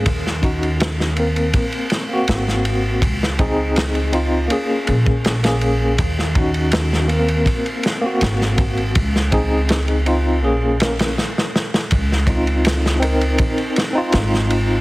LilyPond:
<<
  \new Staff \with { instrumentName = "Tine electric piano" } { \time 4/4 \key des \major \tempo 4 = 81 r8 <des' ees' ges'>4 <bes c' bes'>4~ <bes c' bes'>16 <bes c' ges'>4~ <bes c' ges'>16 | r8 <c' ees' aes'>4 <c' ees' f'>8 <bes des' aes'>4~ <bes des' aes'>16 <bes des' aes'>8. | r8 <des' ees' ges'>4 <bes c' bes'>4~ <bes c' bes'>16 <bes c' ges'>4~ <bes c' ges'>16 | r8 <c' ees' aes'>4 <c' ees' f'>8 <bes des' aes'>8 <bes des' bes'>8 r4 |
r8 <c' ees' f'>4 <c' ees' bes'>4~ <c' ees' bes'>16 <c' ees' f'>4~ <c' ees' f'>16 | }
  \new Staff \with { instrumentName = "Upright bass" } { \clef bass \time 4/4 \key des \major ees,2 r4 aes,,4 | des,2 r8 bes,,8 bes,,4 | ees,2 r4 aes,,4 | des,2 bes,,4 r4 |
des,2 r4 aes,,4 | }
  \new DrumStaff \with { instrumentName = "Drums" } \drummode { \time 4/4 <bd cymr>16 sn16 <bd cymr>16 cymr16 <cymr sn>16 sn16 cymr16 cymr16 <bd cymr>16 cymr16 <cymr sn>8 <cymr sn>16 sn16 cymr8 | <bd cymr>16 sn16 <bd cymr>8 <cymr sn>16 cymr16 cymr8 cymr8 cymr16 bd16 <cymr sn>16 <cymr sn>16 cymr8 | <bd cymr>16 sn16 <bd cymr>16 cymr16 <cymr sn>16 sn16 cymr16 cymr16 <bd cymr>16 cymr16 <cymr sn>8 <cymr sn>16 sn16 <bd cymr>16 cymr16 | <bd cymr>16 sn16 <bd cymr>8 <cymr sn>16 cymr16 cymr8 r8 <cymr sn>16 <cymr sn>16 sn16 sn16 sn16 sn16 |
<bd cymr>16 sn16 <bd cymr>16 cymr16 <cymr sn>16 sn16 cymr16 cymr16 <bd cymr>16 cymr16 <cymr sn>8 <cymr sn>16 sn16 cymr8 | }
>>